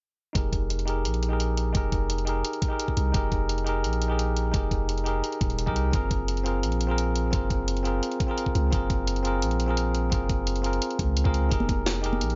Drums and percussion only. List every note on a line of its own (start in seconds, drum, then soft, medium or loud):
0.35 kick loud
0.35 closed hi-hat medium
0.53 kick loud
0.53 closed hi-hat medium
0.70 closed hi-hat medium
0.79 closed hi-hat soft
0.88 closed hi-hat medium
1.05 closed hi-hat loud
1.14 closed hi-hat soft
1.23 closed hi-hat medium
1.40 closed hi-hat medium
1.57 closed hi-hat medium
1.75 kick loud
1.75 closed hi-hat medium
1.92 kick loud
1.92 closed hi-hat medium
2.10 closed hi-hat medium
2.18 closed hi-hat soft
2.27 closed hi-hat medium
2.45 closed hi-hat medium
2.53 closed hi-hat soft
2.62 kick loud
2.62 closed hi-hat medium
2.79 closed hi-hat medium
2.88 kick medium
2.97 closed hi-hat medium
3.14 kick loud
3.14 closed hi-hat medium
3.32 kick loud
3.32 closed hi-hat medium
3.49 closed hi-hat medium
3.58 closed hi-hat soft
3.67 closed hi-hat medium
3.84 closed hi-hat medium
3.93 closed hi-hat soft
4.02 closed hi-hat medium
4.19 closed hi-hat medium
4.37 closed hi-hat medium
4.54 kick loud
4.54 closed hi-hat medium
4.71 kick loud
4.71 closed hi-hat medium
4.89 closed hi-hat medium
4.98 closed hi-hat soft
5.06 closed hi-hat medium
5.24 closed hi-hat medium
5.32 closed hi-hat soft
5.41 kick loud
5.41 closed hi-hat medium
5.50 closed hi-hat soft
5.59 closed hi-hat medium
5.67 kick medium
5.76 closed hi-hat medium
5.93 kick loud
5.93 closed hi-hat medium
6.11 kick loud
6.11 closed hi-hat medium
6.28 closed hi-hat medium
6.37 closed hi-hat soft
6.46 closed hi-hat medium
6.63 closed hi-hat medium
6.72 closed hi-hat soft
6.81 closed hi-hat medium
6.98 closed hi-hat medium
7.16 closed hi-hat medium
7.33 kick loud
7.33 closed hi-hat medium
7.50 kick medium
7.50 closed hi-hat medium
7.68 closed hi-hat medium
7.77 closed hi-hat soft
7.85 closed hi-hat medium
8.03 closed hi-hat medium
8.12 closed hi-hat soft
8.20 kick loud
8.20 closed hi-hat medium
8.38 closed hi-hat medium
8.46 kick medium
8.55 closed hi-hat medium
8.72 kick loud
8.72 closed hi-hat medium
8.90 kick loud
8.90 closed hi-hat medium
9.07 closed hi-hat medium
9.16 closed hi-hat soft
9.25 closed hi-hat medium
9.42 closed hi-hat loud
9.51 closed hi-hat soft
9.60 closed hi-hat medium
9.77 closed hi-hat medium
9.95 closed hi-hat medium
10.12 kick loud
10.12 closed hi-hat loud
10.29 kick loud
10.29 closed hi-hat medium
10.47 closed hi-hat medium
10.56 closed hi-hat soft
10.64 closed hi-hat medium
10.73 closed hi-hat soft
10.82 closed hi-hat medium
10.91 closed hi-hat soft
10.99 kick loud
10.99 closed hi-hat medium
11.17 closed hi-hat medium
11.25 kick medium
11.34 closed hi-hat medium
11.51 kick loud
11.51 closed hi-hat medium
11.60 high conga medium
11.69 kick loud
11.69 closed hi-hat medium
11.86 snare loud
11.86 closed hi-hat medium
11.86 high conga medium
11.95 closed hi-hat soft
12.04 closed hi-hat medium
12.13 high conga medium
12.21 closed hi-hat medium
12.30 closed hi-hat soft